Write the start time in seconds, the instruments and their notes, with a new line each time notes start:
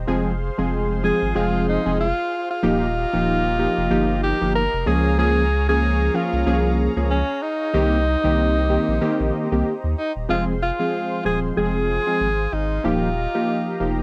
Already playing: analog synth pad C5
0.07 sub bass F1, synth keys F3 G#3 C4 G#4, analog synth pad G#4 F5 C6
0.58 sub bass F1, synth keys F3 G#3 C4 G#4
1.03 synth keys F3 G#3 C4 G#4, alto saxophone G#4
1.22 sub bass G#1
1.35 sub bass F1, synth keys F3 G#3 C4 G#4, alto saxophone F4
1.69 alto saxophone D#4
1.85 sub bass F1, synth keys F3 G#3 C4 G#4
2.00 alto saxophone F4
2.51 alto saxophone F4
2.63 sub bass D#1, synth keys F3 A#3 D#4 G4, analog synth pad G4 D#5 A#5
3.13 sub bass D#1, synth keys F3 A#3 D#4 G4
3.59 synth keys F3 A#3 D#4 G4
3.77 sub bass F1
3.90 sub bass G1, synth keys F3 A#3 D#4 G4
4.23 alto saxophone G4
4.41 sub bass G1, synth keys F3 A#3 D#4 G4
4.55 alto saxophone A#4
4.73 sub bass F1
4.86 sub bass C#2, synth keys F3 A#3 C#4 G#4, analog synth pad G#4 C#5 F5, alto saxophone G#4
5.18 synth keys F3 A#3 C#4 G#4, alto saxophone G#4
5.69 synth keys F3 A#3 C#4 G#4, alto saxophone G#4
6.14 synth keys F3 A#3 C#4 G#4, alto saxophone F4
6.33 sub bass C2
6.46 sub bass C2, synth keys F3 A#3 C#4 G#4
6.96 sub bass C#2, synth keys F3 A#3 C#4 G#4
7.11 alto saxophone C#4
7.42 alto saxophone D#4
7.74 sub bass C2, synth keys D#3 A#3 C4 G4, analog synth pad G4 C5 D#5
8.24 sub bass C2, synth keys D#3 A#3 C4 G4
8.69 synth keys D#3 A#3 C4 G4
8.88 sub bass A#1
9.01 synth keys D#3 A#3 C4 G4
9.20 sub bass A#1
9.52 sub bass C2, synth keys D#3 A#3 C4 G4
9.84 sub bass D#2
9.98 alto saxophone D#4
10.16 sub bass D#1
10.29 sub bass F1, synth keys F3 G#3 C4 G#4, alto saxophone F4, analog synth pad G#4 C5 F5 C6
10.62 alto saxophone F4
10.79 synth keys F3 G#3 C4 G#4
11.25 sub bass D#1, synth keys F3 G#3 C4 G#4, alto saxophone G#4
11.56 sub bass F1, synth keys F3 G#3 C4 G#4, alto saxophone G#4
12.07 synth keys F3 G#3 C4 G#4
12.21 sub bass G#1
12.52 sub bass G#1, alto saxophone D#4
12.84 sub bass D#1, synth keys F3 A#3 D#4 G4, alto saxophone F4, analog synth pad G4 D#5 A#5
13.34 synth keys F3 A#3 D#4 G4
13.80 sub bass F1, synth keys F3 A#3 D#4 G4